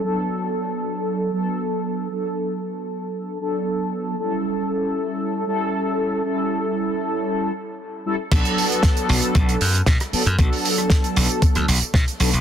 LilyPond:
<<
  \new Staff \with { instrumentName = "Analog polysynth" } { \time 4/4 \key b \minor \tempo 4 = 116 <fis b d' a'>2~ <fis b d' a'>8 <fis b d' a'>4. | <fis b d' a'>2~ <fis b d' a'>8 <fis b d' a'>4. | <g cis' e' a'>2~ <g cis' e' a'>8 <g cis' e' a'>4. | <g cis' e' a'>2~ <g cis' e' a'>8 r4 <g cis' e' a'>8 |
<fis b d' a'>2~ <fis b d' a'>8 r4 <fis b d' a'>8 | <fis b d' a'>2~ <fis b d' a'>8 r4 <fis b d' a'>8 | }
  \new Staff \with { instrumentName = "Slap bass" } { \clef bass \time 4/4 \key b \minor r1 | r1 | r1 | r1 |
b,,16 r4 r16 b,,16 r16 b,,16 r16 fis,16 r16 b,16 r8 fis,16 | b,,16 r4 r16 b,,16 r8 d,16 b,,16 r16 b,16 r16 b,,16 b,,16 | }
  \new DrumStaff \with { instrumentName = "Drums" } \drummode { \time 4/4 r4 r4 r4 r4 | r4 r4 r4 r4 | r4 r4 r4 r4 | r4 r4 r4 r4 |
<cymc hh bd>16 hh16 hho16 hh16 <hh bd sn>16 hh16 hho16 hh16 <hh bd>16 hh16 hho16 hh16 <hh bd sn>16 <hh ss>16 hho16 hh16 | <hh bd>16 hho16 hho16 <hh ss>16 <hh bd sn>16 hh16 hho16 hh16 <hh bd>16 <hh ss>16 hho16 hh16 <hh bd sn>16 hh16 hho16 hh16 | }
>>